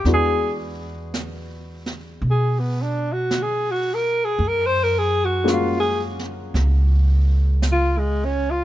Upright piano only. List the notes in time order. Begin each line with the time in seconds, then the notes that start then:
0.06 G#3 B3 D4 E4 F#4
5.44 G#3 A#3 C#4 F4
5.49 F#4